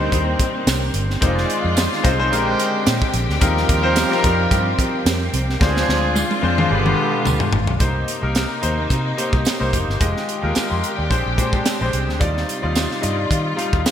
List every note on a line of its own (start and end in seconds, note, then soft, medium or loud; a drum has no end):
0.00 1.20 D#3 medium
0.00 0.91 G3 medium
0.00 1.25 G3 medium
0.00 1.21 A#3 medium
0.00 1.20 C4 medium
0.00 1.21 C4 medium
0.00 1.24 D4 medium
0.00 0.91 D#4 medium
0.00 1.21 D#4 medium
0.00 1.24 G4 loud
0.00 1.24 A#4 medium
0.00 0.64 C5 loud
0.00 0.91 C5 medium
0.12 0.34 D#2 loud
0.12 kick medium
0.12 closed hi-hat medium
0.39 kick medium
0.39 closed hi-hat medium
0.67 0.89 C2 loud
0.67 snare loud
0.67 closed hi-hat loud
0.67 tambourine medium
0.94 1.16 G1 medium
0.94 closed hi-hat medium
1.10 snare soft
1.21 1.44 F1 loud
1.21 2.31 D#3 medium
1.21 2.02 G#3 medium
1.21 1.92 G#3 medium
1.21 3.40 G#3 medium
1.21 1.92 C4 medium
1.21 1.92 D#4 medium
1.21 2.02 F4 medium
1.21 1.92 F4 medium
1.21 2.31 F4 medium
1.21 1.92 C5 medium
1.21 2.02 D5 medium
1.21 kick loud
1.21 closed hi-hat medium
1.38 snare soft
1.50 closed hi-hat medium
1.64 1.86 F2 loud
1.77 snare loud
1.77 closed hi-hat medium
1.77 tambourine medium
1.93 snare soft
2.03 2.33 C2 loud
2.03 2.16 G#3 medium
2.03 2.16 C4 medium
2.03 2.17 D#4 medium
2.03 2.17 F4 medium
2.03 2.17 C5 loud
2.03 kick medium
2.03 closed hi-hat medium
2.19 2.29 G#3 medium
2.19 2.29 C4 medium
2.19 2.32 D#4 medium
2.19 2.32 F4 medium
2.19 2.32 C5 loud
2.31 2.54 A#1 loud
2.31 3.41 D3 medium
2.31 3.24 G#3 medium
2.31 3.13 G#3 medium
2.31 3.24 C4 medium
2.31 6.67 C4 medium
2.31 3.24 D4 medium
2.31 3.24 G4 medium
2.31 5.58 G4 medium
2.31 3.13 G4 medium
2.31 3.25 A#4 medium
2.31 3.13 C5 loud
2.31 closed hi-hat medium
2.60 closed hi-hat medium
2.87 2.99 A#2 medium
2.87 snare loud
2.87 closed hi-hat medium
2.87 tambourine medium
3.02 kick medium
3.14 3.26 A#1 loud
3.14 closed hi-hat medium
3.29 3.39 D2 loud
3.29 snare soft
3.40 3.64 D#2 loud
3.40 5.59 F3 medium
3.40 3.76 G3 medium
3.40 5.30 G3 medium
3.40 3.76 C4 medium
3.40 3.76 D#4 medium
3.40 3.76 F4 medium
3.40 5.30 F4 medium
3.40 3.76 A#4 loud
3.40 5.30 A#4 loud
3.40 kick loud
3.40 closed hi-hat medium
3.57 snare soft
3.69 4.03 D#2 loud
3.69 kick medium
3.69 closed hi-hat medium
3.82 4.05 G3 medium
3.82 4.06 C4 medium
3.82 4.06 D#4 medium
3.82 4.06 F4 medium
3.82 4.06 C5 loud
3.96 snare medium
3.96 closed hi-hat medium
3.96 tambourine medium
4.10 5.02 G3 medium
4.10 5.02 C4 medium
4.10 5.02 D#4 medium
4.10 5.02 F4 medium
4.10 5.02 A#4 loud
4.10 snare soft
4.24 4.46 F2 medium
4.24 kick loud
4.24 closed hi-hat medium
4.51 4.73 G2 loud
4.51 kick medium
4.51 closed hi-hat medium
4.79 kick medium
4.79 closed hi-hat medium
5.06 5.28 F2 medium
5.06 snare loud
5.06 closed hi-hat loud
5.06 tambourine medium
5.33 5.55 C2 medium
5.33 closed hi-hat medium
5.50 snare soft
5.59 5.83 D2 loud
5.59 6.69 D3 medium
5.59 6.41 F3 medium
5.59 6.31 G#3 medium
5.59 6.31 C4 medium
5.59 6.41 D4 medium
5.59 6.31 D4 medium
5.59 7.78 F4 medium
5.59 6.31 F4 medium
5.59 6.41 G#4 loud
5.59 6.31 C5 medium
5.59 kick loud
5.59 snare medium
5.77 snare medium
5.88 6.22 D2 medium
5.88 snare medium
6.16 high tom medium
6.16 tambourine medium
6.31 high tom medium
6.42 6.65 F2 medium
6.42 6.55 G#3 medium
6.42 6.55 C4 medium
6.42 6.55 D4 medium
6.42 6.56 F4 medium
6.42 6.56 C5 medium
6.58 6.69 G#3 medium
6.58 6.71 C4 medium
6.58 6.69 D4 medium
6.58 6.69 F4 medium
6.58 6.71 C5 loud
6.58 mid tom medium
6.69 6.92 G1 loud
6.69 7.79 B2 medium
6.69 7.51 D3 medium
6.69 7.79 G#3 medium
6.69 7.63 G#3 medium
6.69 7.51 B3 medium
6.69 7.64 D4 medium
6.69 7.64 F4 medium
6.69 7.51 G4 medium
6.69 7.64 G4 medium
6.69 7.64 B4 medium
6.86 mid tom medium
7.26 7.38 D2 medium
7.26 mid tom medium
7.26 tambourine medium
7.40 floor tom medium
7.53 7.65 G#1 medium
7.53 floor tom loud
7.67 7.78 B1 medium
7.67 floor tom medium
7.79 8.02 C2 medium
7.79 9.98 C3 medium
7.79 8.15 A#3 medium
7.79 9.99 A#3 medium
7.79 8.15 D#4 medium
7.79 9.98 D#4 medium
7.79 8.15 G4 medium
7.79 8.16 C5 medium
7.79 kick medium
7.79 closed hi-hat medium
8.08 closed hi-hat medium
8.22 8.45 C2 medium
8.22 8.56 A#3 medium
8.22 8.56 D#4 medium
8.22 8.56 G4 medium
8.22 8.57 A#4 medium
8.35 snare medium
8.35 closed hi-hat medium
8.35 tambourine medium
8.61 8.85 D#2 medium
8.61 9.09 A#3 medium
8.61 9.09 D#4 medium
8.61 9.10 G4 medium
8.61 9.10 C5 medium
8.61 closed hi-hat medium
8.90 9.12 C3 loud
8.90 kick medium
8.90 closed hi-hat medium
9.17 9.53 A#3 medium
9.17 9.53 D#4 medium
9.17 9.53 G4 medium
9.17 9.53 C5 medium
9.17 closed hi-hat medium
9.33 9.43 C2 medium
9.33 kick medium
9.45 snare loud
9.45 closed hi-hat medium
9.45 tambourine medium
9.60 9.71 C2 medium
9.60 9.94 A#3 medium
9.60 9.94 D#4 medium
9.60 9.94 G4 medium
9.60 9.94 C5 medium
9.73 9.85 F1 medium
9.73 kick medium
9.73 closed hi-hat medium
9.88 9.98 G1 medium
9.88 snare soft
10.00 10.13 F1 medium
10.00 11.09 D#3 medium
10.00 12.18 G#3 medium
10.00 10.35 G#3 medium
10.00 10.36 F4 medium
10.00 10.36 G4 medium
10.00 12.19 G4 medium
10.00 10.36 D#5 medium
10.00 kick loud
10.00 closed hi-hat medium
10.17 snare soft
10.29 closed hi-hat medium
10.42 10.53 D#2 medium
10.42 10.76 G#3 medium
10.42 10.77 F4 medium
10.42 10.77 G4 medium
10.42 10.77 A#4 medium
10.55 10.70 D#5 medium
10.55 10.70 G#5 medium
10.55 muted fingered electric bass stroke soft
10.55 snare medium
10.55 closed hi-hat medium
10.55 tambourine medium
10.70 10.81 F2 medium
10.70 10.95 G5 medium
10.70 10.96 C6 medium
10.84 closed hi-hat medium
10.97 11.08 D#2 medium
10.97 11.24 D5 medium
10.97 11.24 G5 medium
11.10 11.22 A#1 loud
11.10 13.91 C3 medium
11.10 11.33 G#3 medium
11.10 12.19 C4 medium
11.10 11.34 D4 medium
11.10 11.34 G4 medium
11.10 11.34 C5 medium
11.10 kick medium
11.10 closed hi-hat medium
11.26 11.36 A#1 medium
11.37 11.60 A#2 medium
11.37 11.73 G#3 medium
11.37 11.73 D4 medium
11.37 11.73 G4 medium
11.37 11.73 C5 medium
11.37 kick medium
11.37 closed hi-hat medium
11.53 kick medium
11.66 snare loud
11.66 closed hi-hat medium
11.66 tambourine medium
11.80 11.91 A#1 medium
11.80 12.14 G#3 medium
11.80 12.15 D4 medium
11.80 12.15 G4 medium
11.80 12.15 C5 medium
11.93 12.08 C2 medium
11.93 closed hi-hat medium
12.08 12.18 D2 medium
12.08 snare soft
12.19 12.43 D#2 medium
12.19 12.55 G3 medium
12.19 13.91 G3 medium
12.19 12.55 D#4 medium
12.19 12.55 F4 medium
12.19 13.91 F4 medium
12.19 12.56 D5 medium
12.19 kick loud
12.19 closed hi-hat medium
12.37 snare soft
12.49 closed hi-hat medium
12.62 12.85 D#2 medium
12.62 12.97 G3 medium
12.62 12.97 D#4 medium
12.62 12.97 F4 medium
12.62 12.97 D5 medium
12.75 snare medium
12.75 closed hi-hat medium
12.75 tambourine medium
12.91 snare soft
13.01 13.25 G2 medium
13.01 13.49 G3 medium
13.01 13.49 D#4 medium
13.01 13.49 F4 medium
13.01 13.50 D5 medium
13.01 closed hi-hat medium
13.31 13.52 D#3 medium
13.31 kick medium
13.31 closed hi-hat medium
13.56 13.91 G3 medium
13.56 13.91 D#4 medium
13.56 13.91 F4 medium
13.56 13.91 F5 medium
13.56 closed hi-hat medium
13.73 13.83 D#2 medium
13.73 kick medium
13.86 snare loud
13.86 closed hi-hat medium
13.86 tambourine medium